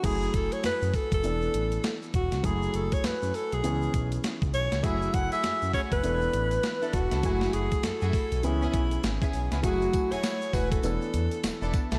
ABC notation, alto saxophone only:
X:1
M:4/4
L:1/16
Q:"Swing 16ths" 1/4=100
K:F#m
V:1 name="Alto saxophone"
G2 A c B2 A A6 z F2 | G2 A c B2 A G4 z3 c2 | e2 f e3 c B6- B F2- | F2 G2 A4 E6 z2 |
F3 c3 B A6- A z2 |]